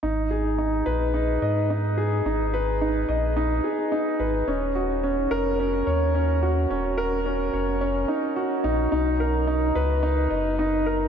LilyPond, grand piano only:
\new Staff \with { instrumentName = "Grand piano" } { \time 4/4 \key aes \dorian \tempo 4 = 108 ees'8 aes'8 ees'8 ces''8 ees'8 ees''8 ees'8 aes'8 | ees'8 ces''8 ees'8 ees''8 ees'8 aes'8 ees'8 ces''8 | des'8 ges'8 des'8 bes'8 des'8 des''8 des'8 ges'8 | des'8 bes'8 des'8 des''8 des'8 ees'8 ges'8 ees'8 |
dis'8 ais'8 dis'8 b'8 dis'8 dis''8 dis'8 ais'8 | }